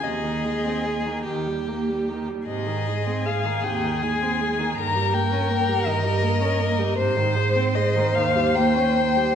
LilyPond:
<<
  \new Staff \with { instrumentName = "Violin" } { \time 6/8 \key aes \major \tempo 4. = 51 ees''4. r4. | ees''4 f''8 g''8 aes''4 | bes''8 g''4 ees''4. | c''4 ees''8 f''8 g''4 | }
  \new Staff \with { instrumentName = "Violin" } { \time 6/8 \key aes \major aes'4. g'4~ g'16 r16 | aes'2. | bes'2. | c''2. | }
  \new Staff \with { instrumentName = "Viola" } { \clef bass \time 6/8 \key aes \major c16 ees16 aes16 c'16 aes16 ees16 ees16 g16 bes16 g16 ees16 g16 | c16 ees16 aes16 c'16 aes16 ees16 c16 ees16 aes16 c'16 aes16 ees16 | ees16 g16 bes16 des'16 bes16 g16 ees16 g16 bes16 des'16 bes16 g16 | c16 ees16 aes16 c'16 aes16 ees16 ees16 g16 bes16 des'16 bes16 g16 | }
  \new Staff \with { instrumentName = "Cello" } { \clef bass \time 6/8 \key aes \major ees,4. ees,4. | aes,4. ees,4. | g,4. g,4. | aes,4. ees,4. | }
>>